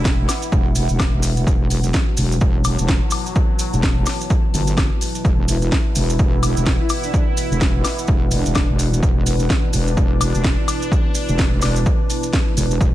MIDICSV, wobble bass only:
0, 0, Header, 1, 2, 480
1, 0, Start_track
1, 0, Tempo, 472441
1, 1490, Time_signature, 4, 2, 24, 8
1, 13152, End_track
2, 0, Start_track
2, 0, Title_t, "Wobble bass"
2, 0, Program_c, 0, 39
2, 0, Note_on_c, 0, 28, 96
2, 275, Note_off_c, 0, 28, 0
2, 531, Note_on_c, 0, 28, 97
2, 890, Note_off_c, 0, 28, 0
2, 913, Note_on_c, 0, 28, 95
2, 1130, Note_off_c, 0, 28, 0
2, 1154, Note_on_c, 0, 28, 98
2, 1475, Note_off_c, 0, 28, 0
2, 1491, Note_on_c, 0, 28, 98
2, 1955, Note_off_c, 0, 28, 0
2, 2212, Note_on_c, 0, 28, 96
2, 2436, Note_off_c, 0, 28, 0
2, 2451, Note_on_c, 0, 28, 95
2, 2810, Note_off_c, 0, 28, 0
2, 2834, Note_on_c, 0, 28, 94
2, 3051, Note_off_c, 0, 28, 0
2, 3793, Note_on_c, 0, 28, 100
2, 4115, Note_off_c, 0, 28, 0
2, 4610, Note_on_c, 0, 31, 100
2, 4970, Note_off_c, 0, 31, 0
2, 5331, Note_on_c, 0, 28, 96
2, 5795, Note_off_c, 0, 28, 0
2, 6051, Note_on_c, 0, 28, 97
2, 6275, Note_off_c, 0, 28, 0
2, 6291, Note_on_c, 0, 28, 95
2, 6650, Note_off_c, 0, 28, 0
2, 6673, Note_on_c, 0, 28, 96
2, 6890, Note_off_c, 0, 28, 0
2, 7632, Note_on_c, 0, 28, 97
2, 7955, Note_off_c, 0, 28, 0
2, 8211, Note_on_c, 0, 28, 96
2, 8570, Note_off_c, 0, 28, 0
2, 8592, Note_on_c, 0, 28, 97
2, 8810, Note_off_c, 0, 28, 0
2, 8834, Note_on_c, 0, 28, 101
2, 9156, Note_off_c, 0, 28, 0
2, 9170, Note_on_c, 0, 28, 99
2, 9635, Note_off_c, 0, 28, 0
2, 9891, Note_on_c, 0, 28, 99
2, 10115, Note_off_c, 0, 28, 0
2, 10130, Note_on_c, 0, 28, 94
2, 10490, Note_off_c, 0, 28, 0
2, 10512, Note_on_c, 0, 28, 93
2, 10730, Note_off_c, 0, 28, 0
2, 11471, Note_on_c, 0, 28, 97
2, 11794, Note_off_c, 0, 28, 0
2, 11810, Note_on_c, 0, 28, 97
2, 12035, Note_off_c, 0, 28, 0
2, 12771, Note_on_c, 0, 28, 95
2, 12995, Note_off_c, 0, 28, 0
2, 13010, Note_on_c, 0, 28, 100
2, 13152, Note_off_c, 0, 28, 0
2, 13152, End_track
0, 0, End_of_file